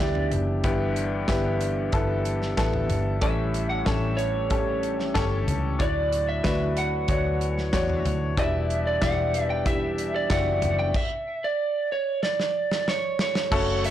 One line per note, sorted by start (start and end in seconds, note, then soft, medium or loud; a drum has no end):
0.00 0.30 D2 medium
0.00 0.67 B2 medium
0.00 5.75 E3 medium
0.00 5.75 G3 medium
0.00 3.18 B3 medium
0.00 0.67 D4 medium
0.00 3.18 D4 medium
0.00 0.64 E4 medium
0.00 0.64 G4 medium
0.00 3.18 G4 medium
0.00 0.28 D5 medium
0.00 kick loud
0.15 floor tom medium
0.32 0.62 F#1 medium
0.32 closed hi-hat medium
0.32 floor tom medium
0.64 1.25 G1 loud
0.64 1.57 G2 medium
0.64 1.57 D3 medium
0.64 1.14 B3 medium
0.64 1.14 E4 medium
0.64 1.14 G4 medium
0.64 kick loud
0.64 closed hi-hat medium
0.96 closed hi-hat medium
1.28 1.89 G1 medium
1.28 1.78 B3 medium
1.28 1.79 E4 medium
1.28 1.79 G4 medium
1.28 kick loud
1.28 snare loud
1.28 closed hi-hat medium
1.61 closed hi-hat medium
1.92 2.54 G1 medium
1.92 2.43 B3 medium
1.92 2.43 E4 medium
1.92 2.43 A4 medium
1.92 kick loud
1.92 closed hi-hat medium
2.25 closed hi-hat medium
2.42 snare soft
2.57 2.88 A1 medium
2.57 3.07 B3 medium
2.57 3.08 E4 medium
2.57 3.08 A4 medium
2.57 kick loud
2.57 snare loud
2.57 closed hi-hat medium
2.73 floor tom medium
2.89 3.20 G1 medium
2.89 closed hi-hat medium
2.89 floor tom medium
3.21 3.82 A1 medium
3.21 4.15 A2 medium
3.21 4.14 E3 medium
3.21 8.34 A3 medium
3.21 3.72 C#4 medium
3.21 8.34 E4 medium
3.21 3.72 G4 medium
3.21 5.78 G4 medium
3.21 3.72 A4 medium
3.21 3.69 E5 medium
3.21 kick loud
3.21 closed hi-hat medium
3.54 closed hi-hat medium
3.70 3.85 F#5 medium
3.85 5.11 A1 medium
3.85 4.36 C#4 medium
3.85 4.36 G4 medium
3.85 4.36 A4 medium
3.85 4.19 E5 medium
3.85 kick loud
3.85 snare medium
3.85 closed hi-hat medium
4.17 5.43 C#5 medium
4.17 closed hi-hat medium
4.50 5.01 C#4 medium
4.50 5.01 G4 medium
4.50 5.01 A4 medium
4.50 kick loud
4.50 closed hi-hat medium
4.83 closed hi-hat medium
4.99 snare soft
5.14 5.45 G1 medium
5.14 5.65 C#4 medium
5.14 5.65 G4 medium
5.14 5.65 A4 medium
5.14 kick loud
5.14 snare loud
5.14 closed hi-hat medium
5.47 5.77 C#2 medium
5.47 closed hi-hat medium
5.47 floor tom medium
5.79 6.40 D2 medium
5.79 6.72 A2 medium
5.79 8.36 D3 medium
5.79 8.36 F#3 medium
5.79 6.29 D4 medium
5.79 6.29 F#4 medium
5.79 8.36 F#4 medium
5.79 6.29 D5 medium
5.79 6.30 D5 medium
5.79 kick loud
5.79 closed hi-hat medium
6.12 closed hi-hat medium
6.29 6.44 E5 medium
6.43 7.05 D2 medium
6.43 6.94 D4 medium
6.43 6.94 F#4 medium
6.43 6.94 B4 medium
6.43 6.78 E5 medium
6.43 kick loud
6.43 snare loud
6.43 closed hi-hat medium
6.77 8.02 F#5 medium
6.77 closed hi-hat medium
7.08 7.73 D2 loud
7.08 7.58 D4 medium
7.08 7.58 F#4 medium
7.08 7.58 C#5 medium
7.08 kick loud
7.08 closed hi-hat medium
7.41 closed hi-hat medium
7.58 snare soft
7.73 8.03 E2 loud
7.73 8.23 D4 medium
7.73 8.23 F#4 medium
7.73 8.23 C#5 loud
7.73 kick loud
7.73 snare loud
7.73 closed hi-hat medium
7.90 floor tom medium
8.05 8.35 D2 medium
8.05 closed hi-hat medium
8.05 floor tom medium
8.37 8.98 E1 loud
8.37 9.30 B2 medium
8.37 10.92 E3 medium
8.37 10.92 G3 medium
8.37 10.92 B3 medium
8.37 10.92 D4 medium
8.37 8.87 E4 medium
8.37 8.87 G4 medium
8.37 10.92 G4 medium
8.37 8.87 D5 medium
8.37 8.83 E5 medium
8.37 kick loud
8.37 closed hi-hat medium
8.70 closed hi-hat medium
8.87 9.03 D5 medium
9.01 10.26 E1 loud
9.01 9.51 E4 medium
9.01 9.51 G4 medium
9.01 9.51 D5 medium
9.01 9.50 F#5 loud
9.01 kick loud
9.01 snare loud
9.01 closed hi-hat medium
9.34 closed hi-hat medium
9.50 9.65 G5 medium
9.66 10.16 E4 medium
9.66 10.16 G4 medium
9.66 10.16 E5 medium
9.66 kick loud
9.66 closed hi-hat medium
9.98 closed hi-hat medium
10.16 10.30 D5 medium
10.30 10.60 F#1 medium
10.30 10.80 E4 medium
10.30 10.36 F#4 medium
10.30 10.80 D5 medium
10.30 10.76 F#5 medium
10.30 kick loud
10.30 snare loud
10.30 closed hi-hat medium
10.36 10.83 G4 medium
10.62 10.92 F#1 medium
10.62 closed hi-hat medium
10.62 floor tom medium
10.79 10.95 G5 loud
10.94 11.45 E5 medium
10.94 kick loud
10.94 crash medium
11.44 11.92 D5 medium
11.92 12.23 C#5 medium
12.23 13.16 D5 medium
12.23 snare soft
12.40 snare medium
12.71 snare medium
12.88 13.18 C#5 medium
12.88 snare medium
13.19 13.85 C#5 loud
13.19 snare medium
13.35 snare medium
13.50 13.90 F#1 loud
13.50 13.90 C#3 medium
13.50 13.90 A3 medium
13.50 13.90 C#4 medium
13.50 13.90 F#4 medium
13.50 13.90 A4 loud
13.50 kick loud
13.50 crash medium
13.84 13.90 E5 medium
13.84 hi-hat pedal medium
13.84 open hi-hat medium